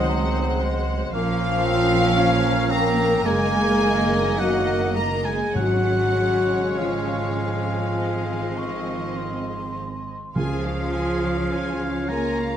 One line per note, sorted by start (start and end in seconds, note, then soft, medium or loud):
0.00 1.10 C#2 medium
0.00 0.62 D#3 medium
0.00 1.09 F#3 medium
0.00 0.11 G#3 medium
0.00 1.09 G#3 medium
0.00 1.09 C4 medium
0.00 0.62 D#4 medium
0.00 1.09 C5 medium
0.00 0.62 D#5 medium
0.00 1.10 F#5 medium
0.09 0.63 F#3 medium
0.61 1.13 G#3 medium
1.13 3.25 A#1 medium
1.13 3.21 F3 medium
1.13 2.67 F3 medium
1.13 1.67 A#3 medium
1.13 3.21 C#4 medium
1.13 3.22 C#4 medium
1.13 2.67 F4 loud
1.13 5.52 A#4 medium
1.13 2.67 F5 medium
1.13 2.67 F5 loud
1.13 3.22 F5 medium
1.65 2.19 C4 medium
2.18 2.72 C#4 medium
2.70 3.25 A#3 medium
2.70 3.27 C4 medium
2.70 3.24 A#4 loud
2.70 3.28 A#5 medium
2.70 3.26 A#5 medium
3.25 5.52 F#1 medium
3.25 5.38 D#3 medium
3.25 4.39 G#3 medium
3.25 5.25 A#3 loud
3.25 5.52 A#3 medium
3.25 5.38 A#3 medium
3.25 4.38 G#4 loud
3.25 5.51 D#5 medium
3.25 4.39 G#5 loud
3.25 4.41 G#5 medium
4.38 4.96 F#3 medium
4.38 4.96 F#4 medium
4.38 4.96 F#5 medium
4.38 4.95 F#5 medium
4.96 5.26 A#3 medium
4.96 5.26 A#4 medium
4.96 5.27 A#5 medium
4.96 5.25 A#5 medium
5.25 5.56 G#3 medium
5.25 5.57 G#4 medium
5.25 5.56 G#5 medium
5.55 10.10 G#1 medium
5.55 7.35 G#2 medium
5.55 7.96 C#3 medium
5.55 6.79 F#3 medium
5.55 9.72 G#3 medium
5.55 7.95 C#4 medium
5.55 7.96 C#4 medium
5.55 6.79 F#4 loud
5.55 10.10 G#4 medium
5.55 7.95 C#5 medium
5.55 6.78 F#5 medium
5.55 6.81 F#5 medium
6.77 9.77 F3 medium
6.77 9.77 F4 medium
6.77 9.77 F5 medium
6.77 8.60 G#5 medium
8.00 9.97 D#3 medium
8.00 10.10 C4 medium
8.00 9.97 C4 medium
8.00 10.10 D#5 soft
8.58 9.18 C#6 medium
9.17 10.35 C6 soft
10.35 11.38 C#2 medium
10.35 12.57 C#3 medium
10.35 12.05 C#3 medium
10.35 12.05 F3 medium
10.35 12.57 C#4 medium
10.35 10.62 F4 soft
10.35 12.05 F4 medium
10.35 10.62 G#4 soft
10.35 10.90 G#4 soft
10.35 12.05 F5 medium
10.35 12.10 F5 medium
10.35 10.62 G#5 soft
10.63 10.94 C#4 soft
10.63 10.93 F4 soft
10.63 10.93 F5 soft
10.93 11.22 F4 soft
10.93 11.53 G#4 medium
10.93 11.23 G#4 soft
10.93 11.23 G#5 soft
11.23 11.52 C#4 soft
11.23 11.51 F4 soft
11.23 11.52 F5 soft
11.52 12.51 C#2 soft
11.52 11.79 F4 soft
11.52 11.79 G#4 soft
11.52 12.57 C#5 soft
11.52 11.78 G#5 soft
11.81 12.09 C#4 soft
11.81 12.08 F4 soft
11.81 12.09 F5 soft
12.09 12.57 A#3 medium
12.09 12.36 F4 soft
12.09 12.37 G#4 soft
12.09 12.57 A#4 medium
12.09 12.36 G#5 soft
12.09 12.57 A#5 medium
12.37 12.57 C#4 soft
12.37 12.57 F4 soft
12.37 12.57 F5 soft